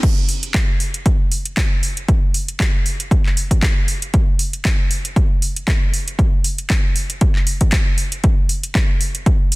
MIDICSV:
0, 0, Header, 1, 2, 480
1, 0, Start_track
1, 0, Tempo, 512821
1, 33, Time_signature, 4, 2, 24, 8
1, 8943, End_track
2, 0, Start_track
2, 0, Title_t, "Drums"
2, 30, Note_on_c, 9, 36, 116
2, 30, Note_on_c, 9, 42, 50
2, 30, Note_on_c, 9, 49, 69
2, 123, Note_off_c, 9, 36, 0
2, 123, Note_off_c, 9, 42, 0
2, 123, Note_off_c, 9, 49, 0
2, 268, Note_on_c, 9, 46, 98
2, 361, Note_off_c, 9, 46, 0
2, 402, Note_on_c, 9, 42, 63
2, 495, Note_off_c, 9, 42, 0
2, 509, Note_on_c, 9, 36, 116
2, 509, Note_on_c, 9, 42, 51
2, 511, Note_on_c, 9, 39, 114
2, 603, Note_off_c, 9, 36, 0
2, 603, Note_off_c, 9, 42, 0
2, 605, Note_off_c, 9, 39, 0
2, 750, Note_on_c, 9, 46, 86
2, 844, Note_off_c, 9, 46, 0
2, 882, Note_on_c, 9, 42, 65
2, 975, Note_off_c, 9, 42, 0
2, 990, Note_on_c, 9, 36, 115
2, 990, Note_on_c, 9, 42, 50
2, 1083, Note_off_c, 9, 36, 0
2, 1083, Note_off_c, 9, 42, 0
2, 1231, Note_on_c, 9, 46, 100
2, 1325, Note_off_c, 9, 46, 0
2, 1362, Note_on_c, 9, 42, 63
2, 1455, Note_off_c, 9, 42, 0
2, 1470, Note_on_c, 9, 36, 106
2, 1472, Note_on_c, 9, 42, 51
2, 1474, Note_on_c, 9, 39, 115
2, 1564, Note_off_c, 9, 36, 0
2, 1565, Note_off_c, 9, 42, 0
2, 1568, Note_off_c, 9, 39, 0
2, 1712, Note_on_c, 9, 46, 89
2, 1806, Note_off_c, 9, 46, 0
2, 1844, Note_on_c, 9, 42, 65
2, 1938, Note_off_c, 9, 42, 0
2, 1952, Note_on_c, 9, 36, 120
2, 1952, Note_on_c, 9, 42, 48
2, 2045, Note_off_c, 9, 36, 0
2, 2045, Note_off_c, 9, 42, 0
2, 2193, Note_on_c, 9, 46, 101
2, 2287, Note_off_c, 9, 46, 0
2, 2325, Note_on_c, 9, 42, 62
2, 2419, Note_off_c, 9, 42, 0
2, 2432, Note_on_c, 9, 36, 120
2, 2435, Note_on_c, 9, 42, 49
2, 2438, Note_on_c, 9, 39, 118
2, 2526, Note_off_c, 9, 36, 0
2, 2529, Note_off_c, 9, 42, 0
2, 2531, Note_off_c, 9, 39, 0
2, 2675, Note_on_c, 9, 46, 91
2, 2768, Note_off_c, 9, 46, 0
2, 2808, Note_on_c, 9, 42, 64
2, 2901, Note_off_c, 9, 42, 0
2, 2913, Note_on_c, 9, 36, 121
2, 2917, Note_on_c, 9, 42, 48
2, 3007, Note_off_c, 9, 36, 0
2, 3010, Note_off_c, 9, 42, 0
2, 3050, Note_on_c, 9, 39, 36
2, 3144, Note_off_c, 9, 39, 0
2, 3155, Note_on_c, 9, 46, 104
2, 3248, Note_off_c, 9, 46, 0
2, 3285, Note_on_c, 9, 36, 60
2, 3286, Note_on_c, 9, 42, 60
2, 3378, Note_off_c, 9, 36, 0
2, 3380, Note_off_c, 9, 42, 0
2, 3393, Note_on_c, 9, 36, 113
2, 3394, Note_on_c, 9, 42, 48
2, 3396, Note_on_c, 9, 39, 118
2, 3486, Note_off_c, 9, 36, 0
2, 3488, Note_off_c, 9, 42, 0
2, 3490, Note_off_c, 9, 39, 0
2, 3632, Note_on_c, 9, 46, 92
2, 3726, Note_off_c, 9, 46, 0
2, 3765, Note_on_c, 9, 42, 65
2, 3858, Note_off_c, 9, 42, 0
2, 3872, Note_on_c, 9, 42, 47
2, 3873, Note_on_c, 9, 36, 122
2, 3966, Note_off_c, 9, 42, 0
2, 3967, Note_off_c, 9, 36, 0
2, 4111, Note_on_c, 9, 46, 106
2, 4205, Note_off_c, 9, 46, 0
2, 4244, Note_on_c, 9, 42, 61
2, 4337, Note_off_c, 9, 42, 0
2, 4353, Note_on_c, 9, 36, 122
2, 4354, Note_on_c, 9, 42, 47
2, 4356, Note_on_c, 9, 39, 114
2, 4447, Note_off_c, 9, 36, 0
2, 4447, Note_off_c, 9, 42, 0
2, 4450, Note_off_c, 9, 39, 0
2, 4593, Note_on_c, 9, 46, 91
2, 4686, Note_off_c, 9, 46, 0
2, 4726, Note_on_c, 9, 42, 61
2, 4820, Note_off_c, 9, 42, 0
2, 4833, Note_on_c, 9, 36, 126
2, 4834, Note_on_c, 9, 42, 48
2, 4926, Note_off_c, 9, 36, 0
2, 4927, Note_off_c, 9, 42, 0
2, 5075, Note_on_c, 9, 46, 103
2, 5168, Note_off_c, 9, 46, 0
2, 5208, Note_on_c, 9, 42, 60
2, 5302, Note_off_c, 9, 42, 0
2, 5313, Note_on_c, 9, 36, 115
2, 5317, Note_on_c, 9, 42, 48
2, 5319, Note_on_c, 9, 39, 115
2, 5406, Note_off_c, 9, 36, 0
2, 5410, Note_off_c, 9, 42, 0
2, 5413, Note_off_c, 9, 39, 0
2, 5556, Note_on_c, 9, 46, 93
2, 5649, Note_off_c, 9, 46, 0
2, 5687, Note_on_c, 9, 42, 63
2, 5781, Note_off_c, 9, 42, 0
2, 5791, Note_on_c, 9, 36, 121
2, 5794, Note_on_c, 9, 42, 47
2, 5885, Note_off_c, 9, 36, 0
2, 5887, Note_off_c, 9, 42, 0
2, 6031, Note_on_c, 9, 46, 105
2, 6125, Note_off_c, 9, 46, 0
2, 6163, Note_on_c, 9, 42, 59
2, 6256, Note_off_c, 9, 42, 0
2, 6271, Note_on_c, 9, 36, 118
2, 6271, Note_on_c, 9, 42, 46
2, 6274, Note_on_c, 9, 39, 107
2, 6365, Note_off_c, 9, 36, 0
2, 6365, Note_off_c, 9, 42, 0
2, 6367, Note_off_c, 9, 39, 0
2, 6511, Note_on_c, 9, 46, 92
2, 6605, Note_off_c, 9, 46, 0
2, 6643, Note_on_c, 9, 42, 60
2, 6737, Note_off_c, 9, 42, 0
2, 6749, Note_on_c, 9, 42, 47
2, 6751, Note_on_c, 9, 36, 120
2, 6843, Note_off_c, 9, 42, 0
2, 6845, Note_off_c, 9, 36, 0
2, 6885, Note_on_c, 9, 39, 34
2, 6979, Note_off_c, 9, 39, 0
2, 6989, Note_on_c, 9, 46, 100
2, 7083, Note_off_c, 9, 46, 0
2, 7120, Note_on_c, 9, 42, 57
2, 7122, Note_on_c, 9, 36, 60
2, 7214, Note_off_c, 9, 42, 0
2, 7216, Note_off_c, 9, 36, 0
2, 7228, Note_on_c, 9, 42, 46
2, 7230, Note_on_c, 9, 36, 114
2, 7231, Note_on_c, 9, 39, 110
2, 7322, Note_off_c, 9, 42, 0
2, 7324, Note_off_c, 9, 36, 0
2, 7324, Note_off_c, 9, 39, 0
2, 7467, Note_on_c, 9, 46, 94
2, 7561, Note_off_c, 9, 46, 0
2, 7600, Note_on_c, 9, 42, 60
2, 7694, Note_off_c, 9, 42, 0
2, 7709, Note_on_c, 9, 42, 47
2, 7711, Note_on_c, 9, 36, 114
2, 7803, Note_off_c, 9, 42, 0
2, 7805, Note_off_c, 9, 36, 0
2, 7949, Note_on_c, 9, 46, 103
2, 8042, Note_off_c, 9, 46, 0
2, 8082, Note_on_c, 9, 42, 58
2, 8176, Note_off_c, 9, 42, 0
2, 8190, Note_on_c, 9, 36, 114
2, 8192, Note_on_c, 9, 42, 47
2, 8195, Note_on_c, 9, 39, 106
2, 8284, Note_off_c, 9, 36, 0
2, 8286, Note_off_c, 9, 42, 0
2, 8288, Note_off_c, 9, 39, 0
2, 8430, Note_on_c, 9, 46, 91
2, 8524, Note_off_c, 9, 46, 0
2, 8562, Note_on_c, 9, 42, 60
2, 8655, Note_off_c, 9, 42, 0
2, 8670, Note_on_c, 9, 36, 112
2, 8670, Note_on_c, 9, 42, 48
2, 8764, Note_off_c, 9, 36, 0
2, 8764, Note_off_c, 9, 42, 0
2, 8910, Note_on_c, 9, 46, 97
2, 8943, Note_off_c, 9, 46, 0
2, 8943, End_track
0, 0, End_of_file